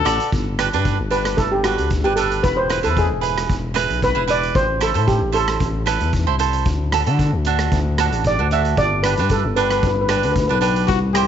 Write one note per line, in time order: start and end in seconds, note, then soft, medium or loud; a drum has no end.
0.00 0.33 A4 loud
0.05 0.19 A1 medium
0.05 0.30 F#4 medium
0.05 0.30 A4 medium
0.05 0.30 D5 loud
0.05 cross-stick medium
0.05 closed hi-hat medium
0.20 closed hi-hat medium
0.32 0.70 G1 medium
0.32 kick loud
0.32 closed hi-hat medium
0.59 0.67 D4 medium
0.59 0.67 G4 medium
0.59 0.68 B4 medium
0.59 cross-stick medium
0.59 closed hi-hat medium
0.73 0.98 G2 medium
0.73 0.97 D4 medium
0.73 0.97 G4 medium
0.73 0.97 B4 medium
0.73 closed hi-hat medium
0.85 kick medium
0.85 closed hi-hat medium
0.99 1.36 G1 medium
1.10 1.43 D4 medium
1.10 1.44 G4 medium
1.10 1.39 B4 medium
1.10 1.44 B4 medium
1.10 closed hi-hat medium
1.25 cross-stick medium
1.25 closed hi-hat medium
1.37 1.76 G1 loud
1.37 1.44 A4 medium
1.37 kick loud
1.37 closed hi-hat medium
1.52 1.65 G4 medium
1.64 1.88 D4 medium
1.64 2.06 F#4 medium
1.64 1.88 G4 medium
1.64 1.89 B4 medium
1.64 cross-stick medium
1.64 closed hi-hat medium
1.78 2.03 D2 medium
1.78 closed hi-hat medium
1.90 kick medium
1.90 closed hi-hat medium
2.04 2.41 G1 medium
2.04 2.12 D4 medium
2.04 2.16 G4 medium
2.04 2.12 G4 soft
2.04 2.13 B4 medium
2.16 2.44 D4 medium
2.16 2.44 G4 medium
2.16 2.44 A4 medium
2.16 2.44 B4 medium
2.16 closed hi-hat medium
2.32 closed hi-hat medium
2.43 2.82 E1 medium
2.43 2.58 B4 loud
2.43 kick loud
2.43 closed hi-hat medium
2.57 2.82 C5 medium
2.69 2.78 E4 medium
2.69 2.79 G#4 medium
2.69 2.79 B4 medium
2.69 cross-stick medium
2.69 closed hi-hat medium
2.83 3.09 E2 medium
2.83 3.07 E4 medium
2.83 3.08 G#4 medium
2.83 2.97 A4 medium
2.83 3.08 B4 medium
2.83 closed hi-hat medium
2.97 3.47 G#4 medium
2.97 kick medium
2.97 closed hi-hat medium
3.10 3.47 E1 medium
3.21 3.54 E4 medium
3.21 3.54 G#4 medium
3.21 3.54 B4 medium
3.21 closed hi-hat medium
3.38 cross-stick medium
3.38 closed hi-hat medium
3.50 3.87 E1 loud
3.50 kick loud
3.50 closed hi-hat medium
3.74 3.99 E4 medium
3.74 3.99 G#4 medium
3.74 4.00 B4 loud
3.74 cross-stick medium
3.74 closed hi-hat medium
3.89 4.14 B1 medium
3.89 closed hi-hat medium
4.02 4.30 B4 loud
4.02 kick medium
4.02 closed hi-hat soft
4.15 4.52 E1 medium
4.15 4.23 E4 medium
4.15 4.24 G#4 medium
4.15 4.23 B4 medium
4.27 4.55 E4 medium
4.27 4.55 G#4 medium
4.27 4.55 B4 medium
4.27 4.57 D5 medium
4.27 closed hi-hat medium
4.43 closed hi-hat medium
4.55 4.93 A1 medium
4.55 4.83 C5 loud
4.55 kick loud
4.55 closed hi-hat medium
4.80 4.90 E4 medium
4.80 4.90 A4 medium
4.80 5.07 A4 medium
4.80 4.90 C5 medium
4.80 cross-stick medium
4.80 closed hi-hat medium
4.94 5.20 A2 medium
4.94 5.19 E4 medium
4.94 5.19 A4 medium
4.94 5.19 C5 medium
4.94 closed hi-hat medium
5.07 5.32 G4 medium
5.07 kick medium
5.07 closed hi-hat medium
5.21 5.58 A1 medium
5.32 5.66 E4 medium
5.32 5.66 A4 soft
5.32 6.62 A4 medium
5.32 5.66 C5 medium
5.32 closed hi-hat medium
5.48 cross-stick medium
5.48 closed hi-hat medium
5.60 5.98 A1 loud
5.60 kick loud
5.60 closed hi-hat soft
5.86 6.10 E4 medium
5.86 6.10 A4 medium
5.86 6.11 B4 medium
5.86 cross-stick medium
5.86 closed hi-hat medium
6.00 6.26 E2 medium
6.00 closed hi-hat medium
6.13 kick medium
6.13 closed hi-hat medium
6.27 6.64 C2 medium
6.27 6.35 E4 medium
6.27 6.35 A4 medium
6.27 6.35 C5 loud
6.39 6.66 E4 medium
6.39 6.66 A4 medium
6.39 6.66 C5 medium
6.39 closed hi-hat medium
6.53 closed hi-hat medium
6.65 7.04 D2 medium
6.65 kick loud
6.65 closed hi-hat medium
6.92 7.02 D4 medium
6.92 7.02 F#4 medium
6.92 7.02 A4 loud
6.92 cross-stick medium
6.92 closed hi-hat medium
7.06 7.31 D3 medium
7.06 7.30 D4 medium
7.06 7.31 F#4 medium
7.06 7.31 A4 medium
7.06 closed hi-hat medium
7.19 kick medium
7.19 closed hi-hat medium
7.32 7.69 D2 medium
7.45 7.78 D4 medium
7.45 7.78 F#4 medium
7.45 7.78 A4 medium
7.45 closed hi-hat medium
7.59 cross-stick medium
7.59 closed hi-hat medium
7.72 8.10 D2 loud
7.72 kick medium
7.72 closed hi-hat medium
7.98 8.23 D4 medium
7.98 8.23 F#4 medium
7.98 8.23 A4 medium
7.98 cross-stick medium
7.98 closed hi-hat medium
8.11 8.36 A1 medium
8.11 closed hi-hat medium
8.24 8.51 D5 medium
8.24 kick medium
8.24 closed hi-hat medium
8.38 8.75 D2 medium
8.38 8.46 D4 medium
8.38 8.47 F#4 medium
8.38 8.47 A4 medium
8.51 8.78 D4 medium
8.51 8.78 F#4 medium
8.51 8.78 A4 medium
8.51 8.79 E5 medium
8.51 closed hi-hat medium
8.65 closed hi-hat medium
8.77 9.15 G1 medium
8.77 9.05 D5 loud
8.77 kick medium
8.77 closed hi-hat medium
9.03 9.13 D4 medium
9.03 9.13 G4 medium
9.03 9.31 B4 medium
9.03 9.13 B4 medium
9.03 cross-stick medium
9.03 closed hi-hat medium
9.17 9.42 G2 medium
9.17 9.42 D4 medium
9.17 9.43 G4 medium
9.17 9.42 B4 medium
9.17 closed hi-hat medium
9.29 9.43 A4 medium
9.29 kick medium
9.29 closed hi-hat medium
9.44 9.81 G1 medium
9.56 9.89 D4 medium
9.56 9.89 G4 medium
9.56 9.63 B4 medium
9.56 9.89 B4 medium
9.56 closed hi-hat medium
9.64 9.71 B4 medium
9.71 9.78 B4 medium
9.71 cross-stick medium
9.71 closed hi-hat medium
9.79 10.21 G1 loud
9.79 9.86 B4 soft
9.79 kick loud
9.79 closed hi-hat medium
9.87 9.93 B4 medium
9.95 10.00 B4 medium
10.01 10.08 B4 medium
10.08 10.33 D4 medium
10.08 10.33 G4 medium
10.08 10.16 B4 soft
10.08 10.33 B4 medium
10.08 cross-stick medium
10.08 closed hi-hat medium
10.17 10.24 B4 soft
10.23 10.48 D2 medium
10.23 10.31 B4 soft
10.23 closed hi-hat medium
10.32 10.39 B4 medium
10.32 kick medium
10.32 closed hi-hat medium
10.40 10.47 B4 medium
10.48 10.87 B1 medium
10.48 10.57 D4 medium
10.48 10.58 G4 medium
10.48 10.54 B4 medium
10.48 10.58 B4 medium
10.55 10.61 B4 soft
10.61 10.88 D4 medium
10.61 10.89 G4 medium
10.61 10.89 B4 medium
10.61 10.70 B4 medium
10.61 closed hi-hat medium
10.76 closed hi-hat medium
10.87 11.26 C2 medium
10.87 11.00 F#4 medium
10.87 kick medium
10.87 closed hi-hat medium
11.15 11.24 E4 medium
11.15 11.27 G4 loud
11.15 11.24 G4 medium
11.15 11.24 C5 medium
11.15 cross-stick medium
11.15 closed hi-hat medium